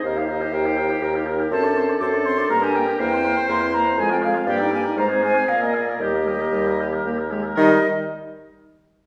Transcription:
X:1
M:3/4
L:1/16
Q:1/4=120
K:Eb
V:1 name="Flute"
e f e2 g8 | =a4 d'2 c'2 b _a g2 | g4 c'2 b2 a g f2 | g2 a2 b2 a2 f e d2 |
e8- e2 z2 | e2 z8 z2 |]
V:2 name="Clarinet"
c8 B4 | =A4 A4 B4 | c8- c2 z2 | d4 c4 B4 |
G8- G2 z2 | E2 z8 z2 |]
V:3 name="Oboe"
B G B G B G B G B G B G | c d c d c d c d B G B G | B c B c B c B c A F A F | G B G B F A F A A B A B |
G B G B G B G B G B G B | B2 z8 z2 |]
V:4 name="French horn"
G E G E G E G E G E G E | C D C D C D C D B, D B, D | B, C B, C B, C B, C A, C A, C | B, E B, E A, C A, C _C B, C B, |
G, B, G, B, G,4 B,2 A,2 | G,2 z8 z2 |]
V:5 name="Bassoon" clef=bass
E,,4 E,,4 E,,4 | ^F,,4 F,,4 G,,4 | =E,,4 E,,4 F,,4 | G,,4 A,,4 B,,4 |
E,,4 E,,4 E,,4 | E,2 z8 z2 |]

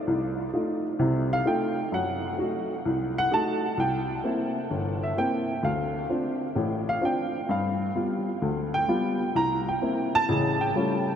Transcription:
X:1
M:4/4
L:1/8
Q:"Swing" 1/4=129
K:F
V:1 name="Upright piano"
z4 z f g2 | ^f2 z3 f a2 | g2 z3 e g2 | f2 z3 f g2 |
f2 z3 g3 | b g2 a2 g3 |]
V:2 name="Upright piano"
C,,2 [A,_EF] z [C,,C,]2 [A,EF] z | ^F,,2 [A,^D^F] z C,,2 [A,DF] z | C,,2 [B,CE] z G,,,2 [B,CE] z | D,,2 [CDF] z [A,,,A,,]2 [CDF] z |
G,,2 [G,=B,F] z D,,2 [G,B,F] z | C,,2 [B,CE] z [A,,,^C,]2 [G,A,^C^E] z |]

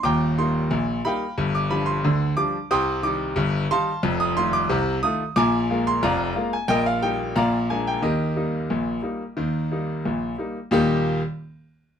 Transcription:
X:1
M:2/4
L:1/16
Q:1/4=90
K:Eb
V:1 name="Grand piano"
[gbd']2 c'4 [fg_c']2- | [fg_c'] d' c' =c'3 d'2 | [gc'e']2 d'4 [f=ac']2- | [f=ac'] e' c' d'3 e'2 |
[abd']3 c' [dfb]3 a | [Beg] f g2 [dfb]2 a g | [GBe]8- | [GBe]4 z4 |
[E,,B,,G,B,EG]2 z6 |]
V:2 name="Grand piano" clef=bass
[E,,,E,,]2 [G,B,E]2 [B,,,B,,]2 [G,B,E]2 | [G,,,G,,]2 [F,G,D]2 [D,,D,]2 [F,G,D]2 | [C,,C,]2 [E,G,E]2 [G,,,G,,]2 [E,G,E]2 | [F,,,F,,]2 [E,=A,F]2 [C,,C,]2 [E,A,F]2 |
[B,,,B,,]2 [A,B,F]2 [F,,,F,,]2 [A,B,F]2 | [B,,,B,,]2 [G,B,E]2 [B,,,B,,]2 [A,B,D]2 | [E,,E,]2 [G,B,E]2 [B,,,B,,]2 [G,B,E]2 | [E,,E,]2 [G,B,E]2 [B,,,B,,]2 [G,B,E]2 |
z8 |]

